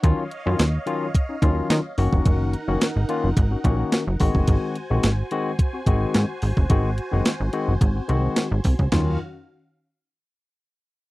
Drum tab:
HH |x-x-x-x-x-x-x-o-|x-x-x-x-x-x-x-o-|x-x-x-x-x-x-x-o-|x-x-x-x-x-x-x-o-|
SD |----o-------o---|----o-------o---|----o-------o---|----o-------o---|
FT |----------------|----------------|----------------|----------------|
BD |o-------o-o----o|o-------o-o---oo|o-------o-o----o|o-------o-----oo|

HH |----------------|
SD |o---------------|
FT |o---------------|
BD |----------------|